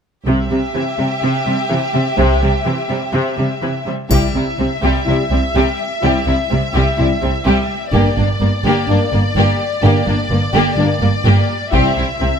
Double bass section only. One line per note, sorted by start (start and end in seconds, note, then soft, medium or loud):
0.26 0.49 C2 soft
2.17 2.40 C2 medium
4.10 4.18 C2 soft
4.34 4.42 C2 soft
4.59 4.67 C2 soft
4.84 4.92 C2 soft
5.07 5.15 C2 soft
5.31 5.39 C2 soft
5.55 5.63 C2 soft
6.03 6.11 C2 soft
6.26 6.34 C2 soft
6.51 6.59 C2 soft
6.74 6.82 C2 soft
6.98 7.06 C2 soft
7.23 7.31 C2 soft
7.46 7.54 C2 medium
7.93 8.01 G1 medium
8.18 8.26 G1 soft
8.41 8.49 G1 soft
8.65 8.73 G1 medium
8.89 8.97 G1 soft
9.12 9.20 G1 soft
9.36 9.44 G1 medium
9.83 9.91 G1 medium
10.07 10.15 G1 soft
10.30 10.38 G1 soft
10.53 10.61 G1 medium
10.77 10.85 G1 soft
11.01 11.09 G1 soft
11.25 11.33 G1 medium
11.73 11.81 C2 medium
11.97 12.05 C2 soft
12.21 12.29 C2 soft